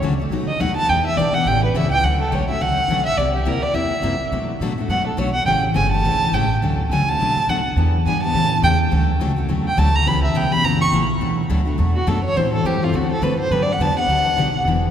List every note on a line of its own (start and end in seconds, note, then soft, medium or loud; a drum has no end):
0.02 0.30 C#2 medium
0.02 0.13 D3 medium
0.02 0.13 F#3 medium
0.02 0.13 A3 medium
0.02 0.13 C#4 medium
0.02 0.13 F#4 medium
0.20 0.31 A3 medium
0.20 0.31 C#4 medium
0.20 0.30 F#4 medium
0.30 0.46 B1 medium
0.30 0.50 B2 medium
0.30 0.50 F#3 medium
0.30 0.51 A3 medium
0.30 0.51 D#4 medium
0.30 0.51 F#4 medium
0.48 0.62 D#5 medium
0.48 muted upright bass stroke soft
0.60 0.87 D#2 medium
0.60 0.70 B2 medium
0.60 0.70 F#3 medium
0.60 0.70 A3 medium
0.60 0.70 D#4 medium
0.60 0.71 F#4 loud
0.60 0.76 F#5 medium
0.77 0.90 A5 loud
0.89 1.16 E2 medium
0.89 1.08 E3 medium
0.89 1.08 B3 medium
0.89 1.08 D4 medium
0.89 1.08 G4 medium
0.89 1.05 G5 medium
1.07 1.19 E5 medium
1.17 1.44 B1 loud
1.17 1.28 E3 medium
1.17 1.28 B3 medium
1.17 1.28 D4 loud
1.17 1.29 G4 medium
1.17 1.36 D5 medium
1.34 1.46 B3 medium
1.34 1.46 D4 soft
1.34 1.45 G4 medium
1.34 1.49 F#5 medium
1.46 1.73 A1 medium
1.46 1.65 C#3 medium
1.46 1.65 E3 medium
1.46 1.65 A3 medium
1.46 1.65 C#4 medium
1.46 1.66 G4 medium
1.46 1.63 G5 loud
1.65 1.78 B4 soft
1.74 2.02 C#2 loud
1.74 1.85 C#3 medium
1.74 1.85 E3 medium
1.74 1.85 A3 medium
1.74 1.86 C#4 medium
1.74 1.85 G4 loud
1.74 1.91 E5 medium
1.91 2.06 G5 loud
2.03 2.30 D2 medium
2.03 2.22 D3 medium
2.03 2.22 F#3 medium
2.03 2.22 A3 medium
2.03 2.22 C#4 medium
2.03 2.23 F#4 medium
2.03 2.20 F#5 medium
2.21 2.37 A4 medium
2.31 2.59 B1 medium
2.31 2.42 D3 medium
2.31 2.42 F#3 medium
2.31 2.42 A3 medium
2.31 2.43 C#4 medium
2.31 2.43 F#4 medium
2.31 2.49 C#5 medium
2.49 2.60 A3 soft
2.49 2.60 C#4 soft
2.49 2.60 F#4 medium
2.49 2.63 E5 medium
2.60 2.88 C#2 medium
2.60 2.79 D3 medium
2.60 2.80 F#3 medium
2.60 2.80 A3 medium
2.60 2.80 C#4 medium
2.60 2.80 F#4 medium
2.60 3.05 F#5 loud
2.88 3.16 B1 medium
2.88 3.00 D3 medium
2.88 3.00 F#3 medium
2.88 3.00 A3 medium
2.88 3.00 C#4 medium
2.88 3.00 F#4 medium
3.06 3.19 E5 loud
3.17 3.45 C2 medium
3.17 3.37 C3 medium
3.17 3.37 G3 medium
3.17 3.37 A#3 medium
3.17 3.37 E4 medium
3.17 3.37 G4 medium
3.17 3.34 D5 medium
3.35 3.49 G4 medium
3.45 3.73 D2 medium
3.45 3.56 C3 medium
3.45 3.56 G3 medium
3.45 3.57 A#3 medium
3.45 3.57 E4 medium
3.45 3.57 G4 medium
3.45 3.64 A#4 medium
3.62 3.74 A#3 soft
3.62 3.74 E4 soft
3.62 3.74 G4 medium
3.62 3.76 D5 medium
3.74 4.02 E2 medium
3.74 3.93 C3 medium
3.74 3.94 G3 medium
3.74 3.94 A#3 medium
3.74 3.94 E4 medium
3.74 3.94 G4 medium
3.74 4.26 E5 medium
4.02 4.19 F#2 medium
4.02 4.13 C3 medium
4.02 4.14 G3 medium
4.02 4.14 A#3 medium
4.02 4.14 E4 loud
4.02 4.14 G4 medium
4.20 muted upright bass stroke soft
4.32 4.59 B2 medium
4.32 4.51 B2 medium
4.32 4.51 F#3 medium
4.32 4.52 A3 medium
4.32 4.52 D4 medium
4.32 4.51 F#4 medium
4.60 4.87 A2 medium
4.60 4.72 B2 medium
4.60 4.72 F#3 medium
4.60 4.72 A3 medium
4.60 4.72 D4 medium
4.60 4.72 F#4 medium
4.78 4.89 A3 medium
4.78 4.89 D4 medium
4.78 4.89 F#4 medium
4.88 5.16 F#2 medium
4.88 5.09 B2 medium
4.88 5.09 F#3 medium
4.88 5.09 A3 medium
4.88 5.09 D4 medium
4.88 5.09 F#4 medium
4.88 5.06 F#5 medium
5.07 5.20 A4 soft
5.17 5.45 B1 medium
5.17 5.28 B2 medium
5.17 5.28 F#3 medium
5.17 5.29 A3 medium
5.17 5.29 D4 medium
5.17 5.29 F#4 loud
5.17 5.34 C#5 medium
5.34 5.45 F#5 medium
5.45 5.74 A1 medium
5.45 5.66 C#3 medium
5.45 5.66 E3 medium
5.45 5.66 A3 medium
5.45 5.66 C#4 medium
5.45 5.66 G4 medium
5.45 5.56 G5 medium
5.74 6.03 G1 medium
5.74 5.86 C#3 medium
5.74 5.86 E3 medium
5.74 5.86 A3 medium
5.74 5.86 C#4 medium
5.74 5.86 G4 medium
5.74 5.91 G#5 medium
5.92 6.04 A3 soft
5.92 6.04 C#4 medium
5.92 6.04 G4 medium
5.92 6.35 A5 loud
6.03 6.31 B1 medium
6.03 6.23 C#3 medium
6.03 6.24 E3 medium
6.03 6.24 A3 medium
6.03 6.24 C#4 medium
6.03 6.24 G4 medium
6.31 6.59 A1 medium
6.31 6.44 C#3 medium
6.31 6.44 E3 medium
6.31 6.44 A3 medium
6.31 6.44 C#4 loud
6.31 6.44 G4 medium
6.31 6.50 G5 medium
6.60 6.88 D2 medium
6.60 6.81 D3 medium
6.60 6.81 F#3 medium
6.60 6.81 A3 medium
6.60 6.82 C#4 medium
6.64 6.82 F#4 medium
6.89 7.18 C#2 medium
6.89 7.02 D3 medium
6.89 7.02 F#3 medium
6.89 7.02 A3 medium
6.89 7.02 C#4 medium
6.89 7.02 F#4 medium
6.89 7.10 G#5 medium
7.08 7.20 A3 soft
7.08 7.20 C#4 medium
7.08 7.19 F#4 medium
7.08 7.51 A5 loud
7.19 7.35 B1 medium
7.19 7.39 B2 medium
7.19 7.39 F#3 medium
7.19 7.39 A3 medium
7.19 7.39 D4 medium
7.19 7.40 F#4 medium
7.36 muted upright bass stroke soft
7.47 7.75 D2 medium
7.47 7.59 B2 medium
7.47 7.59 F#3 medium
7.47 7.59 A3 medium
7.47 7.59 D4 medium
7.47 7.59 F#4 loud
7.47 7.66 F#5 medium
7.76 8.04 E2 medium
7.76 7.96 E3 medium
7.76 7.96 B3 medium
7.76 7.96 D4 medium
7.76 7.97 G4 medium
8.05 8.33 G2 medium
8.05 8.16 E3 medium
8.05 8.17 B3 medium
8.05 8.17 D4 medium
8.05 8.17 G4 medium
8.05 8.22 G#5 medium
8.23 8.35 B3 soft
8.23 8.34 D4 medium
8.23 8.34 G4 medium
8.23 8.60 A5 loud
8.34 8.62 A2 medium
8.34 8.53 C#3 medium
8.34 8.53 E3 medium
8.34 8.54 A3 medium
8.34 8.54 C#4 medium
8.34 8.54 G4 medium
8.62 8.90 E2 loud
8.62 8.74 C#3 medium
8.62 8.74 E3 medium
8.62 8.74 A3 loud
8.62 8.74 C#4 loud
8.62 8.74 G4 medium
8.62 8.73 G5 loud
8.91 9.19 D2 medium
8.91 9.10 D3 medium
8.91 9.10 F#3 medium
8.91 9.11 A3 medium
8.91 9.11 C#4 medium
8.91 9.11 F#4 medium
9.20 9.48 C#2 medium
9.20 9.31 D3 medium
9.20 9.31 F#3 medium
9.20 9.31 A3 medium
9.20 9.31 C#4 medium
9.20 9.31 F#4 loud
9.36 9.48 A3 soft
9.36 9.49 C#4 medium
9.36 9.48 F#4 medium
9.48 9.77 E2 medium
9.48 9.68 D3 medium
9.48 9.68 F#3 medium
9.48 9.68 A3 medium
9.48 9.68 C#4 medium
9.48 9.68 F#4 medium
9.68 9.80 G5 medium
9.77 10.05 D2 loud
9.77 9.88 D3 medium
9.77 9.88 F#3 loud
9.77 9.88 A3 medium
9.77 9.88 C#4 medium
9.77 9.89 F#4 loud
9.77 9.97 A5 loud
9.96 10.09 A#5 loud
10.06 10.33 C#2 medium
10.06 10.25 C#3 medium
10.06 10.25 E3 medium
10.06 10.25 B3 medium
10.06 10.26 C#4 medium
10.06 10.26 G4 medium
10.06 10.23 B5 loud
10.24 10.37 E5 medium
10.34 10.62 B1 medium
10.34 10.45 C#3 medium
10.34 10.46 E3 medium
10.34 10.46 B3 medium
10.34 10.46 C#4 medium
10.34 10.46 G4 medium
10.34 10.53 G5 medium
10.52 10.64 B3 medium
10.52 10.64 C#4 medium
10.52 10.63 G4 medium
10.52 10.66 B5 loud
10.62 10.91 F#1 medium
10.62 10.83 C#3 medium
10.62 10.83 E3 medium
10.62 10.83 A#3 medium
10.62 10.83 C#4 medium
10.62 10.83 F#4 medium
10.62 10.81 A#5 loud
10.81 10.88 C#6 loud
10.92 11.19 A#1 medium
10.92 11.03 C#3 loud
10.92 11.03 E3 medium
10.92 11.04 A#3 loud
10.92 11.03 C#4 loud
10.92 11.03 F#4 medium
11.20 11.48 B1 medium
11.20 11.40 B2 medium
11.20 11.40 F#3 medium
11.20 11.40 A3 medium
11.20 11.40 D4 medium
11.20 11.41 F#4 medium
11.49 11.77 D2 medium
11.49 11.60 B2 medium
11.49 11.60 F#3 medium
11.49 11.61 A3 medium
11.49 11.61 D4 medium
11.49 11.61 F#4 medium
11.65 11.78 A3 soft
11.65 11.77 D4 medium
11.65 11.77 F#4 medium
11.78 12.06 E2 medium
11.78 11.97 B2 medium
11.78 11.97 F#3 medium
11.78 11.98 A3 medium
11.78 11.98 D4 medium
11.78 11.98 F#4 medium
11.95 12.09 F#4 medium
12.07 12.35 F#2 medium
12.07 12.18 B2 medium
12.07 12.18 F#3 medium
12.07 12.18 A3 medium
12.07 12.18 D4 medium
12.07 12.18 F#4 medium
12.07 12.24 A4 medium
12.25 12.38 C#5 loud
12.36 12.63 A2 medium
12.36 12.55 E3 medium
12.36 12.55 G3 medium
12.36 12.56 C4 medium
12.36 12.56 E4 medium
12.36 12.56 A4 medium
12.36 12.53 C5 medium
12.54 12.67 A4 medium
12.64 12.92 G2 medium
12.64 12.76 E3 medium
12.64 12.76 G3 medium
12.64 12.76 C4 medium
12.64 12.76 E4 medium
12.64 12.85 G4 medium
12.64 12.76 A4 medium
12.82 12.93 C4 medium
12.82 12.94 E4 medium
12.82 12.97 F4 medium
12.82 12.93 A4 medium
12.93 13.20 D2 medium
12.93 13.12 D3 medium
12.93 13.13 A3 medium
12.93 13.13 C4 medium
12.93 13.13 F#4 medium
12.93 13.11 F#4 medium
12.93 13.13 A4 medium
13.12 13.24 A4 medium
13.21 13.49 F#2 medium
13.21 13.33 D3 medium
13.21 13.33 A3 medium
13.21 13.33 C4 loud
13.21 13.33 F#4 medium
13.21 13.33 A4 loud
13.21 13.39 B4 medium
13.40 13.53 C5 loud
13.50 13.78 G2 medium
13.50 13.70 D3 medium
13.50 13.70 F#3 medium
13.50 13.71 B3 medium
13.50 13.71 D4 medium
13.50 13.71 G4 medium
13.50 13.64 B4 medium
13.62 13.74 D5 medium
13.72 13.83 F#5 medium
13.79 14.06 E2 medium
13.79 13.90 D3 medium
13.79 13.91 F#3 medium
13.79 13.91 B3 medium
13.79 13.91 D4 medium
13.79 13.91 G4 medium
13.79 13.98 A5 loud
13.97 14.08 B3 soft
13.97 14.09 D4 medium
13.97 14.08 G4 medium
13.97 14.63 F#5 loud
14.07 14.35 D2 medium
14.07 14.27 D3 medium
14.07 14.28 F#3 medium
14.07 14.28 B3 medium
14.07 14.28 D4 medium
14.07 14.28 G4 medium
14.36 14.64 B1 medium
14.36 14.48 D3 medium
14.36 14.48 F#3 medium
14.36 14.48 B3 medium
14.36 14.48 D4 medium
14.36 14.48 G4 loud
14.65 14.91 E1 medium
14.65 14.85 E3 medium
14.65 14.86 B3 medium
14.65 14.86 D4 medium
14.65 14.86 G4 medium